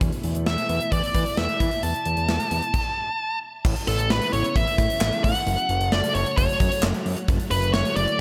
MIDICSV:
0, 0, Header, 1, 5, 480
1, 0, Start_track
1, 0, Key_signature, 3, "major"
1, 0, Tempo, 454545
1, 13, Time_signature, 4, 2, 24, 8
1, 8666, End_track
2, 0, Start_track
2, 0, Title_t, "Lead electric guitar"
2, 0, Program_c, 0, 29
2, 497, Note_on_c, 0, 76, 80
2, 941, Note_off_c, 0, 76, 0
2, 974, Note_on_c, 0, 74, 85
2, 1454, Note_on_c, 0, 76, 93
2, 1468, Note_off_c, 0, 74, 0
2, 1933, Note_on_c, 0, 81, 104
2, 1948, Note_off_c, 0, 76, 0
2, 3570, Note_off_c, 0, 81, 0
2, 4097, Note_on_c, 0, 69, 83
2, 4336, Note_on_c, 0, 71, 84
2, 4342, Note_off_c, 0, 69, 0
2, 4571, Note_off_c, 0, 71, 0
2, 4575, Note_on_c, 0, 73, 91
2, 4814, Note_on_c, 0, 76, 103
2, 4821, Note_off_c, 0, 73, 0
2, 5530, Note_off_c, 0, 76, 0
2, 5534, Note_on_c, 0, 78, 110
2, 6253, Note_on_c, 0, 74, 96
2, 6275, Note_off_c, 0, 78, 0
2, 6490, Note_off_c, 0, 74, 0
2, 6494, Note_on_c, 0, 73, 93
2, 6721, Note_off_c, 0, 73, 0
2, 6733, Note_on_c, 0, 73, 87
2, 7179, Note_off_c, 0, 73, 0
2, 7930, Note_on_c, 0, 71, 84
2, 8166, Note_off_c, 0, 71, 0
2, 8171, Note_on_c, 0, 73, 87
2, 8406, Note_off_c, 0, 73, 0
2, 8410, Note_on_c, 0, 74, 93
2, 8634, Note_off_c, 0, 74, 0
2, 8666, End_track
3, 0, Start_track
3, 0, Title_t, "String machine"
3, 0, Program_c, 1, 50
3, 0, Note_on_c, 1, 47, 78
3, 12, Note_on_c, 1, 69, 84
3, 13, Note_on_c, 1, 57, 73
3, 13, Note_on_c, 1, 64, 72
3, 14, Note_on_c, 1, 52, 72
3, 2850, Note_off_c, 1, 47, 0
3, 2864, Note_off_c, 1, 57, 0
3, 2864, Note_off_c, 1, 64, 0
3, 2864, Note_off_c, 1, 69, 0
3, 2865, Note_off_c, 1, 52, 0
3, 3852, Note_on_c, 1, 49, 81
3, 3852, Note_on_c, 1, 57, 76
3, 3853, Note_on_c, 1, 52, 73
3, 3853, Note_on_c, 1, 59, 73
3, 3853, Note_on_c, 1, 64, 86
3, 5753, Note_off_c, 1, 52, 0
3, 5753, Note_off_c, 1, 59, 0
3, 5753, Note_off_c, 1, 64, 0
3, 5773, Note_on_c, 1, 69, 87
3, 5774, Note_on_c, 1, 54, 74
3, 5775, Note_on_c, 1, 66, 76
3, 7654, Note_off_c, 1, 49, 0
3, 7674, Note_off_c, 1, 54, 0
3, 7674, Note_off_c, 1, 69, 0
3, 7696, Note_on_c, 1, 50, 83
3, 7696, Note_on_c, 1, 54, 76
3, 7696, Note_on_c, 1, 64, 75
3, 8666, Note_off_c, 1, 50, 0
3, 8666, Note_off_c, 1, 54, 0
3, 8666, Note_off_c, 1, 57, 0
3, 8666, Note_off_c, 1, 64, 0
3, 8666, Note_off_c, 1, 66, 0
3, 8666, End_track
4, 0, Start_track
4, 0, Title_t, "Analog synth bass"
4, 0, Program_c, 2, 38
4, 11, Note_on_c, 2, 40, 102
4, 121, Note_off_c, 2, 40, 0
4, 253, Note_on_c, 2, 40, 99
4, 362, Note_off_c, 2, 40, 0
4, 374, Note_on_c, 2, 40, 93
4, 482, Note_off_c, 2, 40, 0
4, 493, Note_on_c, 2, 40, 93
4, 602, Note_off_c, 2, 40, 0
4, 735, Note_on_c, 2, 40, 107
4, 843, Note_off_c, 2, 40, 0
4, 970, Note_on_c, 2, 40, 98
4, 1081, Note_off_c, 2, 40, 0
4, 1209, Note_on_c, 2, 52, 100
4, 1320, Note_off_c, 2, 52, 0
4, 1454, Note_on_c, 2, 40, 93
4, 1562, Note_off_c, 2, 40, 0
4, 1693, Note_on_c, 2, 52, 99
4, 1802, Note_off_c, 2, 52, 0
4, 1934, Note_on_c, 2, 40, 107
4, 2043, Note_off_c, 2, 40, 0
4, 2173, Note_on_c, 2, 40, 96
4, 2282, Note_off_c, 2, 40, 0
4, 2294, Note_on_c, 2, 40, 92
4, 2403, Note_off_c, 2, 40, 0
4, 2412, Note_on_c, 2, 40, 104
4, 2522, Note_off_c, 2, 40, 0
4, 2654, Note_on_c, 2, 40, 98
4, 2763, Note_off_c, 2, 40, 0
4, 3853, Note_on_c, 2, 33, 113
4, 3962, Note_off_c, 2, 33, 0
4, 4094, Note_on_c, 2, 33, 98
4, 4203, Note_off_c, 2, 33, 0
4, 4212, Note_on_c, 2, 33, 91
4, 4322, Note_off_c, 2, 33, 0
4, 4332, Note_on_c, 2, 33, 101
4, 4442, Note_off_c, 2, 33, 0
4, 4571, Note_on_c, 2, 33, 98
4, 4681, Note_off_c, 2, 33, 0
4, 4812, Note_on_c, 2, 33, 103
4, 4921, Note_off_c, 2, 33, 0
4, 5051, Note_on_c, 2, 45, 99
4, 5161, Note_off_c, 2, 45, 0
4, 5294, Note_on_c, 2, 33, 102
4, 5402, Note_off_c, 2, 33, 0
4, 5535, Note_on_c, 2, 45, 99
4, 5643, Note_off_c, 2, 45, 0
4, 5772, Note_on_c, 2, 30, 109
4, 5882, Note_off_c, 2, 30, 0
4, 6012, Note_on_c, 2, 30, 96
4, 6122, Note_off_c, 2, 30, 0
4, 6131, Note_on_c, 2, 30, 98
4, 6241, Note_off_c, 2, 30, 0
4, 6251, Note_on_c, 2, 30, 107
4, 6361, Note_off_c, 2, 30, 0
4, 6491, Note_on_c, 2, 30, 103
4, 6601, Note_off_c, 2, 30, 0
4, 6731, Note_on_c, 2, 30, 110
4, 6841, Note_off_c, 2, 30, 0
4, 6971, Note_on_c, 2, 42, 101
4, 7081, Note_off_c, 2, 42, 0
4, 7211, Note_on_c, 2, 30, 107
4, 7321, Note_off_c, 2, 30, 0
4, 7451, Note_on_c, 2, 42, 99
4, 7561, Note_off_c, 2, 42, 0
4, 7691, Note_on_c, 2, 30, 108
4, 7801, Note_off_c, 2, 30, 0
4, 7931, Note_on_c, 2, 30, 105
4, 8041, Note_off_c, 2, 30, 0
4, 8050, Note_on_c, 2, 30, 100
4, 8161, Note_off_c, 2, 30, 0
4, 8171, Note_on_c, 2, 30, 100
4, 8281, Note_off_c, 2, 30, 0
4, 8410, Note_on_c, 2, 30, 99
4, 8521, Note_off_c, 2, 30, 0
4, 8666, End_track
5, 0, Start_track
5, 0, Title_t, "Drums"
5, 11, Note_on_c, 9, 36, 116
5, 11, Note_on_c, 9, 42, 65
5, 116, Note_off_c, 9, 42, 0
5, 117, Note_off_c, 9, 36, 0
5, 132, Note_on_c, 9, 42, 49
5, 237, Note_off_c, 9, 42, 0
5, 248, Note_on_c, 9, 42, 73
5, 354, Note_off_c, 9, 42, 0
5, 368, Note_on_c, 9, 42, 58
5, 474, Note_off_c, 9, 42, 0
5, 490, Note_on_c, 9, 38, 119
5, 596, Note_off_c, 9, 38, 0
5, 613, Note_on_c, 9, 42, 61
5, 718, Note_off_c, 9, 42, 0
5, 732, Note_on_c, 9, 42, 76
5, 838, Note_off_c, 9, 42, 0
5, 850, Note_on_c, 9, 42, 57
5, 956, Note_off_c, 9, 42, 0
5, 970, Note_on_c, 9, 36, 88
5, 972, Note_on_c, 9, 42, 68
5, 1076, Note_off_c, 9, 36, 0
5, 1078, Note_off_c, 9, 42, 0
5, 1093, Note_on_c, 9, 42, 53
5, 1199, Note_off_c, 9, 42, 0
5, 1209, Note_on_c, 9, 36, 89
5, 1209, Note_on_c, 9, 42, 69
5, 1315, Note_off_c, 9, 36, 0
5, 1315, Note_off_c, 9, 42, 0
5, 1332, Note_on_c, 9, 42, 58
5, 1437, Note_off_c, 9, 42, 0
5, 1451, Note_on_c, 9, 38, 114
5, 1556, Note_off_c, 9, 38, 0
5, 1571, Note_on_c, 9, 42, 47
5, 1677, Note_off_c, 9, 42, 0
5, 1692, Note_on_c, 9, 42, 85
5, 1693, Note_on_c, 9, 36, 90
5, 1798, Note_off_c, 9, 42, 0
5, 1799, Note_off_c, 9, 36, 0
5, 1809, Note_on_c, 9, 42, 53
5, 1914, Note_off_c, 9, 42, 0
5, 1932, Note_on_c, 9, 42, 67
5, 2037, Note_off_c, 9, 42, 0
5, 2052, Note_on_c, 9, 42, 51
5, 2158, Note_off_c, 9, 42, 0
5, 2170, Note_on_c, 9, 42, 78
5, 2276, Note_off_c, 9, 42, 0
5, 2291, Note_on_c, 9, 42, 58
5, 2396, Note_off_c, 9, 42, 0
5, 2414, Note_on_c, 9, 38, 126
5, 2519, Note_off_c, 9, 38, 0
5, 2534, Note_on_c, 9, 42, 59
5, 2639, Note_off_c, 9, 42, 0
5, 2652, Note_on_c, 9, 42, 80
5, 2757, Note_off_c, 9, 42, 0
5, 2771, Note_on_c, 9, 42, 54
5, 2877, Note_off_c, 9, 42, 0
5, 2891, Note_on_c, 9, 49, 90
5, 2892, Note_on_c, 9, 36, 106
5, 2997, Note_off_c, 9, 36, 0
5, 2997, Note_off_c, 9, 49, 0
5, 3852, Note_on_c, 9, 36, 120
5, 3852, Note_on_c, 9, 49, 104
5, 3958, Note_off_c, 9, 36, 0
5, 3958, Note_off_c, 9, 49, 0
5, 3973, Note_on_c, 9, 42, 52
5, 4078, Note_off_c, 9, 42, 0
5, 4091, Note_on_c, 9, 42, 77
5, 4197, Note_off_c, 9, 42, 0
5, 4210, Note_on_c, 9, 42, 61
5, 4315, Note_off_c, 9, 42, 0
5, 4333, Note_on_c, 9, 38, 127
5, 4439, Note_off_c, 9, 38, 0
5, 4453, Note_on_c, 9, 42, 64
5, 4558, Note_off_c, 9, 42, 0
5, 4574, Note_on_c, 9, 42, 83
5, 4679, Note_off_c, 9, 42, 0
5, 4692, Note_on_c, 9, 42, 61
5, 4797, Note_off_c, 9, 42, 0
5, 4812, Note_on_c, 9, 36, 97
5, 4814, Note_on_c, 9, 42, 74
5, 4917, Note_off_c, 9, 36, 0
5, 4920, Note_off_c, 9, 42, 0
5, 4936, Note_on_c, 9, 42, 54
5, 5042, Note_off_c, 9, 42, 0
5, 5051, Note_on_c, 9, 36, 94
5, 5051, Note_on_c, 9, 42, 75
5, 5156, Note_off_c, 9, 42, 0
5, 5157, Note_off_c, 9, 36, 0
5, 5174, Note_on_c, 9, 42, 63
5, 5280, Note_off_c, 9, 42, 0
5, 5293, Note_on_c, 9, 38, 118
5, 5293, Note_on_c, 9, 39, 94
5, 5399, Note_off_c, 9, 38, 0
5, 5399, Note_off_c, 9, 39, 0
5, 5413, Note_on_c, 9, 42, 50
5, 5519, Note_off_c, 9, 42, 0
5, 5535, Note_on_c, 9, 36, 96
5, 5535, Note_on_c, 9, 46, 90
5, 5640, Note_off_c, 9, 36, 0
5, 5640, Note_off_c, 9, 46, 0
5, 5650, Note_on_c, 9, 42, 56
5, 5755, Note_off_c, 9, 42, 0
5, 5773, Note_on_c, 9, 42, 70
5, 5878, Note_off_c, 9, 42, 0
5, 5893, Note_on_c, 9, 42, 52
5, 5998, Note_off_c, 9, 42, 0
5, 6011, Note_on_c, 9, 42, 78
5, 6116, Note_off_c, 9, 42, 0
5, 6132, Note_on_c, 9, 42, 61
5, 6238, Note_off_c, 9, 42, 0
5, 6252, Note_on_c, 9, 38, 127
5, 6358, Note_off_c, 9, 38, 0
5, 6375, Note_on_c, 9, 42, 67
5, 6481, Note_off_c, 9, 42, 0
5, 6494, Note_on_c, 9, 42, 81
5, 6600, Note_off_c, 9, 42, 0
5, 6612, Note_on_c, 9, 42, 59
5, 6718, Note_off_c, 9, 42, 0
5, 6732, Note_on_c, 9, 36, 99
5, 6735, Note_on_c, 9, 42, 75
5, 6838, Note_off_c, 9, 36, 0
5, 6841, Note_off_c, 9, 42, 0
5, 6856, Note_on_c, 9, 42, 57
5, 6961, Note_off_c, 9, 42, 0
5, 6971, Note_on_c, 9, 36, 98
5, 6971, Note_on_c, 9, 42, 75
5, 7076, Note_off_c, 9, 42, 0
5, 7077, Note_off_c, 9, 36, 0
5, 7095, Note_on_c, 9, 42, 62
5, 7200, Note_off_c, 9, 42, 0
5, 7212, Note_on_c, 9, 38, 114
5, 7212, Note_on_c, 9, 39, 96
5, 7318, Note_off_c, 9, 38, 0
5, 7318, Note_off_c, 9, 39, 0
5, 7333, Note_on_c, 9, 42, 50
5, 7438, Note_off_c, 9, 42, 0
5, 7454, Note_on_c, 9, 46, 87
5, 7560, Note_off_c, 9, 46, 0
5, 7568, Note_on_c, 9, 42, 55
5, 7674, Note_off_c, 9, 42, 0
5, 7690, Note_on_c, 9, 42, 73
5, 7692, Note_on_c, 9, 36, 121
5, 7796, Note_off_c, 9, 42, 0
5, 7798, Note_off_c, 9, 36, 0
5, 7811, Note_on_c, 9, 42, 50
5, 7917, Note_off_c, 9, 42, 0
5, 7929, Note_on_c, 9, 42, 83
5, 8035, Note_off_c, 9, 42, 0
5, 8049, Note_on_c, 9, 42, 62
5, 8155, Note_off_c, 9, 42, 0
5, 8169, Note_on_c, 9, 38, 127
5, 8275, Note_off_c, 9, 38, 0
5, 8292, Note_on_c, 9, 42, 65
5, 8397, Note_off_c, 9, 42, 0
5, 8410, Note_on_c, 9, 42, 82
5, 8516, Note_off_c, 9, 42, 0
5, 8529, Note_on_c, 9, 42, 59
5, 8634, Note_off_c, 9, 42, 0
5, 8666, End_track
0, 0, End_of_file